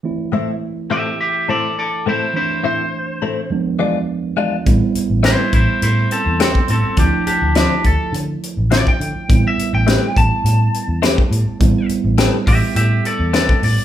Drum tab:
HH |----------------|----------------|x-x-x-x-x-x-x-x-|x-x-x-x-x-x-x-x-|
SD |----------------|----------------|----o-------o---|----o-------o---|
BD |----------------|----------------|o-----o------o--|o-----o------o--|

HH |x-x-x-x-x-x-x-x-|x-x-x-o-x-x-x-o-|
SD |----o-------o---|----o-------o---|
BD |o-----o------o--|o-----o------o--|